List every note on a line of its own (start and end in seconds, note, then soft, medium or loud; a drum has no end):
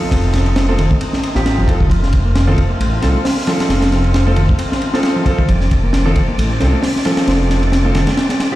0.00 8.55 D#3 medium
0.00 0.10 F3 medium
0.00 8.55 A3 medium
0.00 0.65 C4 medium
0.00 8.55 C4 medium
0.00 0.65 D#4 medium
0.00 1.89 D#4 medium
0.00 0.65 F4 medium
0.00 0.65 A4 loud
0.11 0.22 F1 loud
0.11 0.55 C4 medium
0.11 kick loud
0.11 ride medium
0.23 0.76 F1 medium
0.33 snare soft
0.33 ride medium
0.46 ride soft
0.56 0.67 C4 medium
0.56 snare loud
0.56 ride medium
0.68 0.77 A3 medium
0.68 0.79 C4 medium
0.68 0.79 D#4 medium
0.68 0.79 F4 medium
0.68 0.79 A4 loud
0.78 0.89 F1 medium
0.78 0.89 D#3 medium
0.78 ride medium
0.91 0.99 A3 medium
0.91 kick loud
1.01 1.45 C4 medium
1.01 ride medium
1.13 snare medium
1.23 ride medium
1.35 1.60 A1 loud
1.35 1.66 C4 medium
1.35 1.66 D#4 medium
1.35 1.66 F4 medium
1.35 1.66 G4 loud
1.35 snare medium
1.46 snare loud
1.46 ride medium
1.58 1.88 F1 medium
1.58 1.63 F3 medium
1.68 1.81 C4 medium
1.68 1.81 D#4 medium
1.68 1.81 F4 medium
1.68 1.81 A4 medium
1.68 kick loud
1.68 ride medium
1.80 1.89 D#3 medium
1.80 kick loud
1.90 2.01 F1 medium
1.90 2.01 F3 medium
1.90 5.47 F4 medium
1.90 kick loud
1.90 ride medium
2.03 2.55 F1 medium
2.03 snare soft
2.13 kick loud
2.13 ride medium
2.25 2.46 A#3 medium
2.35 snare loud
2.35 ride medium
2.47 2.56 D#3 medium
2.47 2.58 C4 loud
2.47 2.58 D#4 medium
2.47 2.58 F4 medium
2.47 2.58 A4 loud
2.57 2.68 F1 medium
2.57 kick medium
2.57 ride medium
2.70 2.78 A#3 medium
2.80 2.99 A1 medium
2.80 2.90 A3 medium
2.80 ride medium
3.02 3.13 C2 loud
3.02 3.16 C4 medium
3.02 3.16 D#4 medium
3.02 3.16 F4 medium
3.02 3.16 A4 medium
3.02 snare medium
3.02 ride medium
3.15 3.24 A3 loud
3.25 3.46 C4 medium
3.25 snare loud
3.25 open hi-hat medium
3.37 snare medium
3.47 3.68 F3 medium
3.47 4.24 C4 medium
3.47 4.24 D#4 medium
3.47 4.24 F4 medium
3.47 4.24 A4 loud
3.47 snare medium
3.47 ride medium
3.60 snare loud
3.60 ride medium
3.69 3.80 F1 loud
3.69 4.13 C4 medium
3.69 snare loud
3.69 ride medium
3.81 4.34 F1 medium
3.81 snare loud
3.81 ride medium
3.92 snare medium
3.92 ride medium
4.04 ride soft
4.14 4.26 C4 medium
4.14 snare loud
4.14 ride medium
4.27 4.35 A3 medium
4.27 4.38 C4 medium
4.27 4.38 D#4 medium
4.27 4.38 F4 medium
4.27 4.38 A4 loud
4.36 4.47 F1 medium
4.36 4.48 D#3 medium
4.36 ride medium
4.49 4.57 A3 medium
4.49 kick loud
4.59 5.03 C4 medium
4.59 ride loud
4.72 snare medium
4.82 ride medium
4.94 5.24 C4 loud
4.94 5.24 D#4 medium
4.94 5.24 F4 medium
4.94 5.24 A4 loud
4.94 snare medium
5.03 snare loud
5.03 ride medium
5.16 5.21 F3 medium
5.26 5.39 C4 medium
5.26 5.39 D#4 medium
5.26 5.39 F4 medium
5.26 5.39 A4 loud
5.26 kick medium
5.26 ride medium
5.39 5.47 D#3 medium
5.39 kick medium
5.48 5.59 F1 loud
5.48 5.59 F3 medium
5.48 8.55 D5 medium
5.48 kick loud
5.48 ride medium
5.61 6.13 F1 medium
5.61 snare soft
5.71 kick medium
5.71 ride medium
5.83 6.05 A#3 medium
5.93 snare loud
5.93 ride medium
6.05 6.14 D#3 medium
6.05 6.17 C4 loud
6.05 6.17 D#4 medium
6.05 6.17 F4 medium
6.05 6.17 A4 loud
6.16 6.26 F1 medium
6.16 kick loud
6.16 ride medium
6.28 6.36 A#3 medium
6.38 6.57 A1 medium
6.38 6.48 A3 medium
6.38 ride medium
6.60 6.71 C2 loud
6.60 6.74 C4 medium
6.60 6.74 D#4 medium
6.60 6.74 F4 medium
6.60 6.74 A4 medium
6.60 snare medium
6.60 ride medium
6.73 6.82 A3 loud
6.83 7.04 C4 medium
6.83 snare loud
6.83 open hi-hat medium
6.96 snare medium
7.05 7.27 F3 medium
7.05 7.82 C4 medium
7.05 7.82 D#4 medium
7.05 7.82 F4 medium
7.05 7.82 A4 loud
7.05 snare loud
7.05 ride medium
7.17 snare loud
7.17 ride medium
7.27 7.38 F1 loud
7.27 7.71 C4 medium
7.27 snare medium
7.27 ride medium
7.40 7.92 F1 medium
7.50 snare medium
7.50 ride medium
7.63 ride soft
7.72 7.84 C4 medium
7.72 snare loud
7.72 ride medium
7.85 7.93 A3 medium
7.85 7.96 C4 medium
7.85 7.96 D#4 medium
7.85 7.96 F4 medium
7.85 7.96 A4 loud
7.95 8.05 F1 medium
7.95 8.06 D#3 medium
7.95 snare medium
7.95 ride medium
8.07 8.16 A3 medium
8.07 snare loud
8.07 ride medium
8.17 8.55 C4 medium
8.17 snare loud
8.17 ride medium
8.29 snare loud
8.29 ride medium
8.40 snare loud
8.40 ride medium
8.52 8.55 C4 medium
8.52 8.55 D#4 medium
8.52 8.55 F4 medium
8.52 8.55 G4 loud